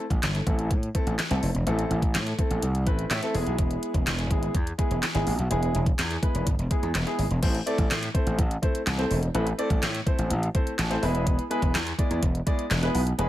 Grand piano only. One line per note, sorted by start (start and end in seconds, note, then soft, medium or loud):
0.34 0.40 E4 soft
0.34 0.40 A4 medium
0.46 0.69 A3 medium
0.46 0.69 C4 medium
0.46 0.69 E4 medium
0.46 0.69 A4 medium
0.94 1.11 A3 medium
0.94 1.11 C4 medium
0.94 1.11 E4 medium
0.94 1.11 A4 loud
1.30 1.47 A3 medium
1.30 1.47 C4 medium
1.30 1.47 E4 medium
1.30 1.47 A4 medium
1.66 1.94 A3 medium
1.66 1.94 C4 medium
1.66 1.94 E4 medium
1.66 1.94 A4 loud
2.26 2.32 E4 soft
2.26 2.32 A4 medium
2.38 2.61 A3 medium
2.38 2.61 C4 medium
2.38 2.61 E4 medium
2.38 2.61 A4 medium
2.86 3.03 A3 medium
2.86 3.03 C4 medium
2.86 3.03 E4 medium
2.86 3.03 B4 medium
3.11 3.33 E5 medium
3.22 3.35 A3 medium
3.22 3.35 C4 medium
3.22 3.33 E4 medium
3.22 3.35 A4 medium
3.34 4.02 G#3 medium
3.34 4.02 B3 medium
3.34 4.02 E4 medium
3.34 4.02 G#4 medium
3.34 3.57 G#5 medium
4.18 4.24 E4 medium
4.18 4.24 G#4 medium
4.30 4.53 G#3 medium
4.30 4.53 B3 medium
4.30 4.53 E4 medium
4.30 4.53 G#4 medium
4.78 4.95 G#3 medium
4.78 4.95 B3 medium
4.78 4.95 E4 medium
4.78 4.95 G#4 medium
5.14 5.31 G#3 medium
5.14 5.31 B3 medium
5.14 5.31 E4 medium
5.14 5.31 G#4 medium
5.50 5.78 G#3 medium
5.50 5.78 B3 medium
5.50 5.78 E4 medium
5.50 5.78 G#4 loud
6.10 6.16 E4 soft
6.10 6.16 G#4 medium
6.22 6.45 G#3 medium
6.22 6.45 B3 medium
6.22 6.45 E4 medium
6.22 6.45 B4 medium
6.70 6.87 G#3 medium
6.70 6.87 B3 medium
6.70 6.87 E4 medium
6.70 6.87 G#4 medium
7.06 7.23 G#3 medium
7.06 7.23 B3 medium
7.06 7.23 E4 medium
7.06 7.23 G#4 medium
7.42 7.54 A3 medium
7.42 7.54 C4 medium
7.42 7.54 E4 medium
7.42 7.54 A4 medium
7.42 7.54 C5 loud
7.66 7.88 A3 medium
7.66 7.89 C4 medium
7.66 7.89 E4 medium
7.66 7.89 A4 medium
7.66 7.89 D5 loud
8.14 8.36 A3 medium
8.14 8.37 C4 medium
8.14 8.37 E4 medium
8.14 8.37 A4 medium
8.14 8.37 C5 loud
8.62 8.79 A3 medium
8.62 8.79 C4 medium
8.62 8.79 E4 medium
8.62 8.79 A4 medium
8.62 8.79 C5 loud
8.98 9.15 A3 medium
8.98 9.15 C4 medium
8.98 9.15 E4 medium
8.98 9.15 A4 medium
8.98 9.15 C5 medium
9.34 9.45 A3 medium
9.34 9.46 C4 medium
9.34 9.46 E4 medium
9.34 9.46 A4 medium
9.34 9.46 B4 loud
9.58 9.80 A3 medium
9.58 9.81 C4 medium
9.58 9.81 E4 medium
9.58 9.81 A4 medium
9.58 9.81 D5 loud
10.06 10.28 A3 medium
10.06 10.29 C4 medium
10.06 10.29 E4 medium
10.06 10.29 A4 medium
10.06 10.29 C5 loud
10.54 10.71 A3 medium
10.54 10.71 C4 medium
10.54 10.71 E4 medium
10.54 10.71 A4 medium
10.54 10.71 C5 loud
10.78 11.01 A5 medium
10.90 11.02 A3 medium
10.90 11.03 C4 medium
10.90 11.01 E4 medium
10.90 11.03 A4 medium
10.90 11.03 C5 medium
11.02 11.41 G#3 medium
11.02 11.41 B3 medium
11.02 11.41 E4 medium
11.02 11.41 G#4 medium
11.02 11.41 B4 loud
11.02 11.25 E5 medium
11.50 11.73 G#3 loud
11.50 11.73 B3 medium
11.50 11.73 E4 medium
11.50 11.73 G#4 medium
11.50 11.73 B4 loud
11.98 12.21 G#3 medium
11.98 12.21 B3 medium
11.98 12.21 E4 medium
11.98 12.21 G#4 medium
11.98 12.21 D5 medium
12.46 12.63 G#3 medium
12.46 12.63 B3 medium
12.46 12.63 E4 medium
12.46 12.63 G#4 medium
12.46 12.63 D5 loud
12.82 12.99 G#3 medium
12.82 12.99 B3 medium
12.82 12.99 E4 medium
12.82 12.99 G#4 medium
12.82 12.99 B4 medium
13.18 13.29 G#3 medium
13.18 13.29 B3 medium
13.18 13.29 E4 medium
13.18 13.29 G#4 medium
13.18 13.29 B4 loud